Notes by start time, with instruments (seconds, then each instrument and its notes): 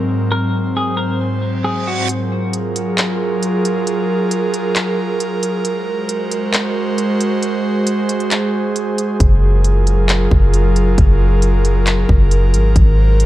Already playing: analog synth pad G#2 F#3 C4 A#4
0.31 clean electric guitar A#4, analog synth pad C5
0.77 clean electric guitar G#4
0.97 clean electric guitar A#4
1.20 reverse cymbal
1.64 clean electric guitar G#4
1.87 clean electric guitar F#4
2.09 analog synth pad F#3 F4 G#4 A#4, closed hi-hat
2.53 closed hi-hat
2.76 closed hi-hat
2.98 clap, closed hi-hat
3.43 closed hi-hat
3.65 closed hi-hat
3.87 closed hi-hat
4.31 closed hi-hat
4.54 closed hi-hat
4.76 clap, closed hi-hat
5.20 closed hi-hat
5.43 closed hi-hat
5.65 analog synth pad G#3 F#4 C5, closed hi-hat
6.09 closed hi-hat
6.31 closed hi-hat
6.54 clap, closed hi-hat
6.98 closed hi-hat
7.21 closed hi-hat
7.42 analog synth pad G#4, closed hi-hat
7.87 closed hi-hat
8.09 closed hi-hat
8.20 closed hi-hat
8.31 clap, closed hi-hat
8.76 closed hi-hat
8.98 closed hi-hat
9.20 808-style bass F#1, analog synth pad F#3 F4 A#4, kick, closed hi-hat
9.64 closed hi-hat
9.87 closed hi-hat
10.09 clap, closed hi-hat
10.31 808-style bass F#1, kick
10.54 closed hi-hat
10.76 closed hi-hat
10.98 808-style bass F#1, kick, closed hi-hat
11.42 closed hi-hat
11.65 closed hi-hat
11.87 clap, closed hi-hat
12.09 808-style bass F#1, kick
12.31 closed hi-hat
12.53 808-style bass G#1, closed hi-hat
12.76 808-style bass G#1, analog synth pad G#3 F#4 C5, kick, closed hi-hat
13.20 closed hi-hat